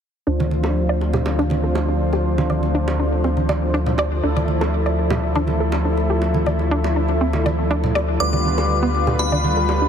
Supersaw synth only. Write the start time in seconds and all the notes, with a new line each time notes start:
0.27 F3 D4 C5
4.23 F3 E4 A4
8.20 D3 G3 F4 B4